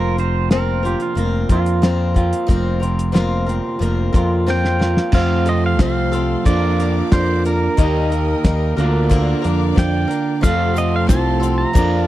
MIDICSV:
0, 0, Header, 1, 8, 480
1, 0, Start_track
1, 0, Tempo, 662252
1, 1803, Time_signature, 4, 2, 24, 8
1, 8749, End_track
2, 0, Start_track
2, 0, Title_t, "Pedal steel guitar"
2, 0, Program_c, 0, 26
2, 3262, Note_on_c, 0, 79, 88
2, 3726, Note_off_c, 0, 79, 0
2, 3729, Note_on_c, 0, 77, 90
2, 3974, Note_off_c, 0, 77, 0
2, 3978, Note_on_c, 0, 75, 77
2, 4084, Note_off_c, 0, 75, 0
2, 4102, Note_on_c, 0, 77, 78
2, 4213, Note_off_c, 0, 77, 0
2, 4222, Note_on_c, 0, 77, 70
2, 4681, Note_off_c, 0, 77, 0
2, 4684, Note_on_c, 0, 74, 80
2, 5135, Note_off_c, 0, 74, 0
2, 5167, Note_on_c, 0, 72, 88
2, 5389, Note_off_c, 0, 72, 0
2, 5411, Note_on_c, 0, 70, 84
2, 7094, Note_on_c, 0, 79, 93
2, 7136, Note_off_c, 0, 70, 0
2, 7558, Note_off_c, 0, 79, 0
2, 7561, Note_on_c, 0, 77, 98
2, 7808, Note_off_c, 0, 77, 0
2, 7814, Note_on_c, 0, 75, 94
2, 7931, Note_off_c, 0, 75, 0
2, 7942, Note_on_c, 0, 77, 88
2, 8034, Note_off_c, 0, 77, 0
2, 8037, Note_on_c, 0, 81, 87
2, 8389, Note_off_c, 0, 81, 0
2, 8392, Note_on_c, 0, 82, 101
2, 8711, Note_off_c, 0, 82, 0
2, 8711, Note_on_c, 0, 81, 101
2, 8749, Note_off_c, 0, 81, 0
2, 8749, End_track
3, 0, Start_track
3, 0, Title_t, "String section"
3, 0, Program_c, 1, 48
3, 3716, Note_on_c, 1, 77, 68
3, 3716, Note_on_c, 1, 84, 93
3, 3721, Note_on_c, 1, 69, 69
3, 3726, Note_on_c, 1, 72, 71
3, 4670, Note_off_c, 1, 84, 0
3, 4673, Note_off_c, 1, 69, 0
3, 4676, Note_off_c, 1, 72, 0
3, 4679, Note_on_c, 1, 86, 93
3, 4682, Note_on_c, 1, 74, 71
3, 4688, Note_on_c, 1, 70, 75
3, 5621, Note_off_c, 1, 77, 0
3, 5632, Note_off_c, 1, 86, 0
3, 5633, Note_off_c, 1, 74, 0
3, 5651, Note_on_c, 1, 75, 64
3, 5653, Note_on_c, 1, 79, 69
3, 5655, Note_on_c, 1, 87, 75
3, 6360, Note_off_c, 1, 75, 0
3, 6361, Note_off_c, 1, 79, 0
3, 6362, Note_off_c, 1, 87, 0
3, 6375, Note_on_c, 1, 86, 83
3, 6379, Note_on_c, 1, 74, 77
3, 6383, Note_on_c, 1, 77, 77
3, 7535, Note_off_c, 1, 70, 0
3, 7556, Note_off_c, 1, 86, 0
3, 7558, Note_off_c, 1, 74, 0
3, 7560, Note_off_c, 1, 77, 0
3, 7565, Note_on_c, 1, 72, 74
3, 7573, Note_on_c, 1, 77, 74
3, 7574, Note_on_c, 1, 69, 71
3, 7574, Note_on_c, 1, 84, 88
3, 8509, Note_off_c, 1, 77, 0
3, 8512, Note_off_c, 1, 72, 0
3, 8517, Note_off_c, 1, 69, 0
3, 8517, Note_off_c, 1, 84, 0
3, 8518, Note_on_c, 1, 77, 76
3, 8519, Note_on_c, 1, 86, 87
3, 8522, Note_on_c, 1, 74, 70
3, 8529, Note_on_c, 1, 70, 86
3, 8749, Note_off_c, 1, 70, 0
3, 8749, Note_off_c, 1, 74, 0
3, 8749, Note_off_c, 1, 77, 0
3, 8749, Note_off_c, 1, 86, 0
3, 8749, End_track
4, 0, Start_track
4, 0, Title_t, "Electric slide guitar"
4, 0, Program_c, 2, 29
4, 141, Note_on_c, 2, 72, 82
4, 365, Note_off_c, 2, 72, 0
4, 622, Note_on_c, 2, 67, 65
4, 729, Note_off_c, 2, 67, 0
4, 741, Note_on_c, 2, 65, 83
4, 1082, Note_off_c, 2, 65, 0
4, 8749, End_track
5, 0, Start_track
5, 0, Title_t, "Steel-string acoustic guitar"
5, 0, Program_c, 3, 25
5, 0, Note_on_c, 3, 53, 90
5, 0, Note_on_c, 3, 60, 84
5, 0, Note_on_c, 3, 65, 92
5, 0, Note_on_c, 3, 70, 103
5, 122, Note_off_c, 3, 53, 0
5, 124, Note_off_c, 3, 70, 0
5, 126, Note_off_c, 3, 60, 0
5, 127, Note_off_c, 3, 65, 0
5, 132, Note_on_c, 3, 70, 60
5, 141, Note_on_c, 3, 65, 50
5, 152, Note_on_c, 3, 60, 43
5, 367, Note_off_c, 3, 60, 0
5, 367, Note_off_c, 3, 70, 0
5, 368, Note_on_c, 3, 53, 67
5, 372, Note_off_c, 3, 65, 0
5, 376, Note_on_c, 3, 60, 90
5, 379, Note_on_c, 3, 65, 80
5, 380, Note_on_c, 3, 70, 77
5, 591, Note_off_c, 3, 70, 0
5, 599, Note_on_c, 3, 70, 58
5, 602, Note_off_c, 3, 65, 0
5, 605, Note_off_c, 3, 53, 0
5, 609, Note_off_c, 3, 60, 0
5, 611, Note_on_c, 3, 65, 65
5, 620, Note_on_c, 3, 60, 49
5, 835, Note_on_c, 3, 53, 64
5, 836, Note_off_c, 3, 60, 0
5, 841, Note_off_c, 3, 70, 0
5, 844, Note_off_c, 3, 65, 0
5, 845, Note_on_c, 3, 60, 64
5, 852, Note_on_c, 3, 65, 69
5, 858, Note_on_c, 3, 70, 75
5, 1073, Note_off_c, 3, 70, 0
5, 1079, Note_off_c, 3, 53, 0
5, 1082, Note_on_c, 3, 70, 63
5, 1084, Note_off_c, 3, 60, 0
5, 1088, Note_off_c, 3, 65, 0
5, 1095, Note_on_c, 3, 65, 60
5, 1103, Note_on_c, 3, 60, 50
5, 1316, Note_off_c, 3, 60, 0
5, 1318, Note_on_c, 3, 53, 86
5, 1322, Note_off_c, 3, 65, 0
5, 1322, Note_off_c, 3, 70, 0
5, 1324, Note_on_c, 3, 60, 77
5, 1331, Note_on_c, 3, 65, 90
5, 1333, Note_on_c, 3, 70, 100
5, 1544, Note_off_c, 3, 70, 0
5, 1552, Note_on_c, 3, 70, 54
5, 1558, Note_off_c, 3, 65, 0
5, 1561, Note_off_c, 3, 53, 0
5, 1564, Note_off_c, 3, 60, 0
5, 1566, Note_on_c, 3, 65, 49
5, 1573, Note_on_c, 3, 60, 47
5, 1787, Note_on_c, 3, 53, 80
5, 1789, Note_off_c, 3, 60, 0
5, 1794, Note_off_c, 3, 65, 0
5, 1796, Note_off_c, 3, 70, 0
5, 1797, Note_on_c, 3, 60, 88
5, 1803, Note_on_c, 3, 65, 83
5, 1805, Note_on_c, 3, 70, 97
5, 2018, Note_off_c, 3, 70, 0
5, 2027, Note_on_c, 3, 70, 47
5, 2031, Note_off_c, 3, 65, 0
5, 2036, Note_off_c, 3, 53, 0
5, 2040, Note_on_c, 3, 65, 44
5, 2041, Note_off_c, 3, 60, 0
5, 2050, Note_on_c, 3, 60, 44
5, 2258, Note_off_c, 3, 60, 0
5, 2262, Note_on_c, 3, 53, 74
5, 2267, Note_off_c, 3, 65, 0
5, 2267, Note_on_c, 3, 60, 81
5, 2268, Note_off_c, 3, 70, 0
5, 2276, Note_on_c, 3, 65, 88
5, 2277, Note_on_c, 3, 70, 81
5, 2501, Note_off_c, 3, 70, 0
5, 2510, Note_on_c, 3, 70, 58
5, 2512, Note_off_c, 3, 65, 0
5, 2513, Note_off_c, 3, 53, 0
5, 2515, Note_off_c, 3, 60, 0
5, 2521, Note_on_c, 3, 65, 60
5, 2533, Note_on_c, 3, 60, 57
5, 2747, Note_on_c, 3, 53, 64
5, 2749, Note_off_c, 3, 60, 0
5, 2757, Note_off_c, 3, 70, 0
5, 2758, Note_off_c, 3, 65, 0
5, 2758, Note_on_c, 3, 60, 60
5, 2766, Note_on_c, 3, 65, 66
5, 2771, Note_on_c, 3, 70, 71
5, 2981, Note_off_c, 3, 70, 0
5, 2990, Note_on_c, 3, 70, 64
5, 2996, Note_off_c, 3, 53, 0
5, 2998, Note_off_c, 3, 65, 0
5, 3001, Note_off_c, 3, 60, 0
5, 3006, Note_on_c, 3, 65, 55
5, 3014, Note_on_c, 3, 60, 47
5, 3232, Note_off_c, 3, 60, 0
5, 3236, Note_on_c, 3, 53, 74
5, 3237, Note_off_c, 3, 70, 0
5, 3240, Note_off_c, 3, 65, 0
5, 3240, Note_on_c, 3, 60, 82
5, 3248, Note_on_c, 3, 65, 97
5, 3248, Note_on_c, 3, 70, 80
5, 3465, Note_off_c, 3, 70, 0
5, 3473, Note_on_c, 3, 70, 55
5, 3479, Note_off_c, 3, 65, 0
5, 3480, Note_off_c, 3, 53, 0
5, 3483, Note_off_c, 3, 60, 0
5, 3488, Note_on_c, 3, 65, 48
5, 3494, Note_on_c, 3, 60, 49
5, 3716, Note_off_c, 3, 60, 0
5, 3719, Note_off_c, 3, 70, 0
5, 3721, Note_off_c, 3, 65, 0
5, 3722, Note_on_c, 3, 53, 73
5, 3724, Note_on_c, 3, 60, 78
5, 3730, Note_on_c, 3, 65, 73
5, 3734, Note_on_c, 3, 69, 78
5, 3948, Note_off_c, 3, 69, 0
5, 3957, Note_on_c, 3, 69, 49
5, 3963, Note_off_c, 3, 53, 0
5, 3963, Note_off_c, 3, 65, 0
5, 3965, Note_off_c, 3, 60, 0
5, 3972, Note_on_c, 3, 65, 46
5, 3980, Note_on_c, 3, 60, 40
5, 4194, Note_on_c, 3, 53, 49
5, 4200, Note_off_c, 3, 60, 0
5, 4201, Note_off_c, 3, 69, 0
5, 4204, Note_off_c, 3, 65, 0
5, 4208, Note_on_c, 3, 60, 53
5, 4213, Note_on_c, 3, 65, 59
5, 4215, Note_on_c, 3, 69, 55
5, 4425, Note_off_c, 3, 69, 0
5, 4434, Note_on_c, 3, 69, 67
5, 4436, Note_off_c, 3, 65, 0
5, 4440, Note_off_c, 3, 53, 0
5, 4445, Note_on_c, 3, 65, 50
5, 4447, Note_off_c, 3, 60, 0
5, 4456, Note_on_c, 3, 60, 45
5, 4677, Note_on_c, 3, 53, 75
5, 4679, Note_off_c, 3, 69, 0
5, 4683, Note_off_c, 3, 60, 0
5, 4685, Note_off_c, 3, 65, 0
5, 4686, Note_on_c, 3, 58, 73
5, 4691, Note_on_c, 3, 62, 75
5, 4694, Note_on_c, 3, 70, 85
5, 4916, Note_off_c, 3, 70, 0
5, 4921, Note_off_c, 3, 53, 0
5, 4925, Note_off_c, 3, 58, 0
5, 4925, Note_off_c, 3, 62, 0
5, 4925, Note_on_c, 3, 70, 60
5, 4934, Note_on_c, 3, 62, 48
5, 4943, Note_on_c, 3, 58, 51
5, 5158, Note_off_c, 3, 58, 0
5, 5158, Note_on_c, 3, 53, 60
5, 5163, Note_off_c, 3, 62, 0
5, 5165, Note_off_c, 3, 70, 0
5, 5167, Note_on_c, 3, 58, 59
5, 5172, Note_on_c, 3, 62, 59
5, 5177, Note_on_c, 3, 70, 58
5, 5396, Note_off_c, 3, 70, 0
5, 5401, Note_off_c, 3, 53, 0
5, 5401, Note_off_c, 3, 62, 0
5, 5405, Note_off_c, 3, 58, 0
5, 5405, Note_on_c, 3, 70, 63
5, 5410, Note_on_c, 3, 62, 50
5, 5423, Note_on_c, 3, 58, 40
5, 5633, Note_off_c, 3, 58, 0
5, 5633, Note_on_c, 3, 51, 87
5, 5635, Note_on_c, 3, 55, 80
5, 5642, Note_on_c, 3, 58, 79
5, 5643, Note_off_c, 3, 62, 0
5, 5644, Note_off_c, 3, 70, 0
5, 5646, Note_on_c, 3, 63, 84
5, 5652, Note_on_c, 3, 70, 78
5, 5861, Note_off_c, 3, 70, 0
5, 5870, Note_on_c, 3, 70, 48
5, 5874, Note_off_c, 3, 63, 0
5, 5878, Note_off_c, 3, 51, 0
5, 5880, Note_off_c, 3, 55, 0
5, 5883, Note_off_c, 3, 58, 0
5, 5883, Note_on_c, 3, 63, 44
5, 5894, Note_on_c, 3, 58, 34
5, 6114, Note_off_c, 3, 58, 0
5, 6115, Note_on_c, 3, 55, 51
5, 6117, Note_off_c, 3, 70, 0
5, 6119, Note_off_c, 3, 63, 0
5, 6123, Note_on_c, 3, 58, 60
5, 6127, Note_on_c, 3, 63, 54
5, 6132, Note_on_c, 3, 70, 68
5, 6345, Note_off_c, 3, 70, 0
5, 6354, Note_on_c, 3, 70, 68
5, 6359, Note_off_c, 3, 55, 0
5, 6363, Note_off_c, 3, 58, 0
5, 6365, Note_off_c, 3, 63, 0
5, 6368, Note_on_c, 3, 62, 59
5, 6373, Note_on_c, 3, 58, 50
5, 6592, Note_on_c, 3, 50, 83
5, 6594, Note_off_c, 3, 58, 0
5, 6595, Note_off_c, 3, 62, 0
5, 6598, Note_off_c, 3, 70, 0
5, 6599, Note_on_c, 3, 53, 85
5, 6603, Note_on_c, 3, 58, 96
5, 6604, Note_on_c, 3, 62, 92
5, 6606, Note_on_c, 3, 70, 88
5, 6817, Note_off_c, 3, 70, 0
5, 6825, Note_on_c, 3, 70, 60
5, 6832, Note_off_c, 3, 62, 0
5, 6837, Note_off_c, 3, 50, 0
5, 6841, Note_off_c, 3, 53, 0
5, 6841, Note_on_c, 3, 62, 60
5, 6843, Note_off_c, 3, 58, 0
5, 6852, Note_on_c, 3, 58, 51
5, 7064, Note_off_c, 3, 58, 0
5, 7065, Note_on_c, 3, 53, 56
5, 7073, Note_on_c, 3, 58, 62
5, 7074, Note_off_c, 3, 62, 0
5, 7074, Note_off_c, 3, 70, 0
5, 7082, Note_on_c, 3, 62, 58
5, 7087, Note_on_c, 3, 70, 70
5, 7294, Note_off_c, 3, 70, 0
5, 7303, Note_on_c, 3, 70, 55
5, 7306, Note_off_c, 3, 62, 0
5, 7313, Note_off_c, 3, 53, 0
5, 7315, Note_on_c, 3, 62, 53
5, 7318, Note_off_c, 3, 58, 0
5, 7328, Note_on_c, 3, 58, 48
5, 7546, Note_on_c, 3, 53, 73
5, 7552, Note_off_c, 3, 70, 0
5, 7553, Note_off_c, 3, 58, 0
5, 7555, Note_off_c, 3, 62, 0
5, 7556, Note_on_c, 3, 60, 71
5, 7558, Note_on_c, 3, 65, 77
5, 7563, Note_on_c, 3, 69, 85
5, 7776, Note_off_c, 3, 69, 0
5, 7785, Note_on_c, 3, 69, 50
5, 7789, Note_off_c, 3, 65, 0
5, 7793, Note_off_c, 3, 53, 0
5, 7795, Note_off_c, 3, 60, 0
5, 7797, Note_on_c, 3, 65, 46
5, 7804, Note_on_c, 3, 60, 42
5, 8020, Note_off_c, 3, 60, 0
5, 8021, Note_on_c, 3, 53, 52
5, 8026, Note_off_c, 3, 65, 0
5, 8029, Note_on_c, 3, 60, 54
5, 8033, Note_off_c, 3, 69, 0
5, 8035, Note_on_c, 3, 65, 59
5, 8042, Note_on_c, 3, 69, 64
5, 8251, Note_off_c, 3, 69, 0
5, 8258, Note_off_c, 3, 65, 0
5, 8260, Note_on_c, 3, 69, 62
5, 8267, Note_on_c, 3, 65, 56
5, 8271, Note_off_c, 3, 53, 0
5, 8271, Note_off_c, 3, 60, 0
5, 8280, Note_on_c, 3, 60, 54
5, 8503, Note_on_c, 3, 53, 70
5, 8504, Note_off_c, 3, 60, 0
5, 8507, Note_on_c, 3, 58, 82
5, 8510, Note_off_c, 3, 69, 0
5, 8512, Note_off_c, 3, 65, 0
5, 8515, Note_on_c, 3, 62, 85
5, 8518, Note_on_c, 3, 70, 87
5, 8741, Note_off_c, 3, 70, 0
5, 8749, Note_off_c, 3, 53, 0
5, 8749, Note_off_c, 3, 58, 0
5, 8749, Note_off_c, 3, 62, 0
5, 8749, End_track
6, 0, Start_track
6, 0, Title_t, "Clean electric guitar"
6, 0, Program_c, 4, 27
6, 0, Note_on_c, 4, 41, 75
6, 0, Note_on_c, 4, 58, 76
6, 0, Note_on_c, 4, 65, 69
6, 127, Note_on_c, 4, 48, 63
6, 148, Note_off_c, 4, 58, 0
6, 373, Note_on_c, 4, 58, 65
6, 613, Note_on_c, 4, 53, 63
6, 842, Note_off_c, 4, 58, 0
6, 850, Note_on_c, 4, 58, 76
6, 1078, Note_off_c, 4, 65, 0
6, 1325, Note_off_c, 4, 48, 0
6, 1800, Note_off_c, 4, 41, 0
6, 1802, Note_on_c, 4, 41, 84
6, 2042, Note_on_c, 4, 48, 66
6, 2048, Note_off_c, 4, 58, 0
6, 2285, Note_on_c, 4, 58, 67
6, 2509, Note_off_c, 4, 53, 0
6, 2512, Note_on_c, 4, 53, 63
6, 2754, Note_off_c, 4, 58, 0
6, 2763, Note_on_c, 4, 58, 73
6, 3004, Note_off_c, 4, 41, 0
6, 3244, Note_off_c, 4, 48, 0
6, 3712, Note_on_c, 4, 41, 98
6, 3712, Note_on_c, 4, 48, 90
6, 3715, Note_off_c, 4, 53, 0
6, 3722, Note_off_c, 4, 58, 0
6, 3724, Note_on_c, 4, 57, 100
6, 4664, Note_off_c, 4, 41, 0
6, 4664, Note_off_c, 4, 48, 0
6, 4670, Note_off_c, 4, 57, 0
6, 4690, Note_on_c, 4, 65, 97
6, 5633, Note_off_c, 4, 65, 0
6, 5666, Note_on_c, 4, 67, 104
6, 6359, Note_on_c, 4, 50, 83
6, 6360, Note_off_c, 4, 67, 0
6, 6379, Note_on_c, 4, 65, 97
6, 7545, Note_off_c, 4, 50, 0
6, 7548, Note_on_c, 4, 41, 101
6, 7555, Note_off_c, 4, 65, 0
6, 7557, Note_on_c, 4, 48, 109
6, 7565, Note_on_c, 4, 57, 108
6, 8499, Note_off_c, 4, 41, 0
6, 8503, Note_off_c, 4, 48, 0
6, 8507, Note_off_c, 4, 57, 0
6, 8533, Note_on_c, 4, 65, 122
6, 8749, Note_off_c, 4, 65, 0
6, 8749, End_track
7, 0, Start_track
7, 0, Title_t, "Picked electric bass"
7, 0, Program_c, 5, 34
7, 0, Note_on_c, 5, 29, 83
7, 685, Note_off_c, 5, 29, 0
7, 843, Note_on_c, 5, 29, 75
7, 1043, Note_off_c, 5, 29, 0
7, 1081, Note_on_c, 5, 41, 92
7, 1681, Note_off_c, 5, 41, 0
7, 1805, Note_on_c, 5, 29, 94
7, 2604, Note_off_c, 5, 29, 0
7, 2760, Note_on_c, 5, 29, 88
7, 2962, Note_off_c, 5, 29, 0
7, 3003, Note_on_c, 5, 41, 89
7, 3603, Note_off_c, 5, 41, 0
7, 3716, Note_on_c, 5, 41, 90
7, 4199, Note_off_c, 5, 41, 0
7, 4199, Note_on_c, 5, 36, 92
7, 4601, Note_off_c, 5, 36, 0
7, 4679, Note_on_c, 5, 41, 90
7, 5081, Note_off_c, 5, 41, 0
7, 5161, Note_on_c, 5, 41, 91
7, 5562, Note_off_c, 5, 41, 0
7, 5642, Note_on_c, 5, 39, 97
7, 6042, Note_off_c, 5, 39, 0
7, 6120, Note_on_c, 5, 39, 94
7, 6321, Note_off_c, 5, 39, 0
7, 6360, Note_on_c, 5, 38, 102
7, 6760, Note_off_c, 5, 38, 0
7, 6850, Note_on_c, 5, 41, 84
7, 7047, Note_off_c, 5, 41, 0
7, 7084, Note_on_c, 5, 41, 86
7, 7283, Note_off_c, 5, 41, 0
7, 7559, Note_on_c, 5, 41, 94
7, 8036, Note_on_c, 5, 36, 95
7, 8047, Note_off_c, 5, 41, 0
7, 8437, Note_off_c, 5, 36, 0
7, 8521, Note_on_c, 5, 41, 94
7, 8749, Note_off_c, 5, 41, 0
7, 8749, End_track
8, 0, Start_track
8, 0, Title_t, "Drums"
8, 133, Note_on_c, 9, 42, 59
8, 205, Note_off_c, 9, 42, 0
8, 367, Note_on_c, 9, 42, 50
8, 368, Note_on_c, 9, 38, 102
8, 440, Note_off_c, 9, 38, 0
8, 440, Note_off_c, 9, 42, 0
8, 617, Note_on_c, 9, 42, 51
8, 689, Note_off_c, 9, 42, 0
8, 723, Note_on_c, 9, 42, 59
8, 796, Note_off_c, 9, 42, 0
8, 847, Note_on_c, 9, 42, 56
8, 920, Note_off_c, 9, 42, 0
8, 1082, Note_on_c, 9, 42, 62
8, 1083, Note_on_c, 9, 36, 86
8, 1154, Note_off_c, 9, 42, 0
8, 1156, Note_off_c, 9, 36, 0
8, 1204, Note_on_c, 9, 42, 64
8, 1277, Note_off_c, 9, 42, 0
8, 1327, Note_on_c, 9, 42, 59
8, 1328, Note_on_c, 9, 38, 102
8, 1400, Note_off_c, 9, 38, 0
8, 1400, Note_off_c, 9, 42, 0
8, 1565, Note_on_c, 9, 36, 74
8, 1565, Note_on_c, 9, 42, 57
8, 1637, Note_off_c, 9, 36, 0
8, 1638, Note_off_c, 9, 42, 0
8, 1686, Note_on_c, 9, 42, 68
8, 1759, Note_off_c, 9, 42, 0
8, 1804, Note_on_c, 9, 36, 99
8, 1809, Note_on_c, 9, 42, 53
8, 1877, Note_off_c, 9, 36, 0
8, 1881, Note_off_c, 9, 42, 0
8, 2049, Note_on_c, 9, 42, 69
8, 2121, Note_off_c, 9, 42, 0
8, 2167, Note_on_c, 9, 42, 65
8, 2239, Note_off_c, 9, 42, 0
8, 2286, Note_on_c, 9, 42, 56
8, 2287, Note_on_c, 9, 38, 99
8, 2359, Note_off_c, 9, 38, 0
8, 2359, Note_off_c, 9, 42, 0
8, 2529, Note_on_c, 9, 42, 55
8, 2601, Note_off_c, 9, 42, 0
8, 2766, Note_on_c, 9, 42, 60
8, 2839, Note_off_c, 9, 42, 0
8, 3002, Note_on_c, 9, 36, 89
8, 3005, Note_on_c, 9, 42, 71
8, 3074, Note_off_c, 9, 36, 0
8, 3077, Note_off_c, 9, 42, 0
8, 3247, Note_on_c, 9, 38, 52
8, 3320, Note_off_c, 9, 38, 0
8, 3368, Note_on_c, 9, 38, 52
8, 3441, Note_off_c, 9, 38, 0
8, 3488, Note_on_c, 9, 38, 76
8, 3561, Note_off_c, 9, 38, 0
8, 3602, Note_on_c, 9, 38, 79
8, 3675, Note_off_c, 9, 38, 0
8, 3710, Note_on_c, 9, 49, 101
8, 3719, Note_on_c, 9, 36, 101
8, 3783, Note_off_c, 9, 49, 0
8, 3791, Note_off_c, 9, 36, 0
8, 3955, Note_on_c, 9, 42, 70
8, 4027, Note_off_c, 9, 42, 0
8, 4197, Note_on_c, 9, 38, 111
8, 4197, Note_on_c, 9, 42, 72
8, 4199, Note_on_c, 9, 36, 108
8, 4269, Note_off_c, 9, 42, 0
8, 4270, Note_off_c, 9, 38, 0
8, 4272, Note_off_c, 9, 36, 0
8, 4442, Note_on_c, 9, 42, 67
8, 4514, Note_off_c, 9, 42, 0
8, 4680, Note_on_c, 9, 42, 87
8, 4682, Note_on_c, 9, 36, 95
8, 4753, Note_off_c, 9, 42, 0
8, 4754, Note_off_c, 9, 36, 0
8, 4926, Note_on_c, 9, 42, 69
8, 4999, Note_off_c, 9, 42, 0
8, 5159, Note_on_c, 9, 38, 99
8, 5159, Note_on_c, 9, 42, 82
8, 5163, Note_on_c, 9, 36, 103
8, 5231, Note_off_c, 9, 42, 0
8, 5232, Note_off_c, 9, 38, 0
8, 5235, Note_off_c, 9, 36, 0
8, 5402, Note_on_c, 9, 42, 65
8, 5474, Note_off_c, 9, 42, 0
8, 5640, Note_on_c, 9, 42, 92
8, 5641, Note_on_c, 9, 36, 108
8, 5712, Note_off_c, 9, 42, 0
8, 5714, Note_off_c, 9, 36, 0
8, 5885, Note_on_c, 9, 42, 77
8, 5957, Note_off_c, 9, 42, 0
8, 6121, Note_on_c, 9, 42, 87
8, 6122, Note_on_c, 9, 36, 99
8, 6122, Note_on_c, 9, 38, 100
8, 6193, Note_off_c, 9, 42, 0
8, 6194, Note_off_c, 9, 38, 0
8, 6195, Note_off_c, 9, 36, 0
8, 6364, Note_on_c, 9, 42, 73
8, 6437, Note_off_c, 9, 42, 0
8, 6601, Note_on_c, 9, 42, 95
8, 6603, Note_on_c, 9, 36, 102
8, 6674, Note_off_c, 9, 42, 0
8, 6675, Note_off_c, 9, 36, 0
8, 6845, Note_on_c, 9, 42, 74
8, 6917, Note_off_c, 9, 42, 0
8, 7085, Note_on_c, 9, 36, 109
8, 7088, Note_on_c, 9, 38, 105
8, 7088, Note_on_c, 9, 42, 85
8, 7157, Note_off_c, 9, 36, 0
8, 7160, Note_off_c, 9, 42, 0
8, 7161, Note_off_c, 9, 38, 0
8, 7325, Note_on_c, 9, 42, 68
8, 7398, Note_off_c, 9, 42, 0
8, 7563, Note_on_c, 9, 36, 104
8, 7564, Note_on_c, 9, 82, 75
8, 7566, Note_on_c, 9, 42, 79
8, 7636, Note_off_c, 9, 36, 0
8, 7636, Note_off_c, 9, 82, 0
8, 7638, Note_off_c, 9, 42, 0
8, 7801, Note_on_c, 9, 82, 61
8, 7803, Note_on_c, 9, 42, 71
8, 7873, Note_off_c, 9, 82, 0
8, 7875, Note_off_c, 9, 42, 0
8, 8037, Note_on_c, 9, 42, 87
8, 8038, Note_on_c, 9, 38, 108
8, 8040, Note_on_c, 9, 36, 105
8, 8043, Note_on_c, 9, 82, 97
8, 8110, Note_off_c, 9, 42, 0
8, 8111, Note_off_c, 9, 38, 0
8, 8112, Note_off_c, 9, 36, 0
8, 8115, Note_off_c, 9, 82, 0
8, 8283, Note_on_c, 9, 42, 57
8, 8286, Note_on_c, 9, 82, 72
8, 8355, Note_off_c, 9, 42, 0
8, 8358, Note_off_c, 9, 82, 0
8, 8516, Note_on_c, 9, 42, 82
8, 8519, Note_on_c, 9, 36, 110
8, 8522, Note_on_c, 9, 82, 105
8, 8589, Note_off_c, 9, 42, 0
8, 8591, Note_off_c, 9, 36, 0
8, 8594, Note_off_c, 9, 82, 0
8, 8749, End_track
0, 0, End_of_file